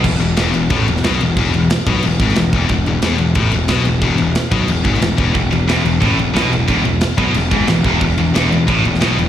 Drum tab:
CC |x-x-x-x-x-x-x-x-|x-x-x-x-x-x-x-x-|x-x-x-x-x-x-x-x-|x-x-x-x-x-x-x-x-|
SD |----o------oo---|----o------oo---|----o-------o---|----o------oo---|
BD |o-------o-------|o-----o---o---o-|o-------o-------|o-----o---o---o-|

CC |x-x-x-x-x-x-x-x-|x-x-x-x-x-x-x-x-|x-x-x-x-x-x-x-x-|
SD |----o-------o---|----o-------o---|----o------oo---|
BD |o-------o-------|o-----o---o---o-|o-------o-------|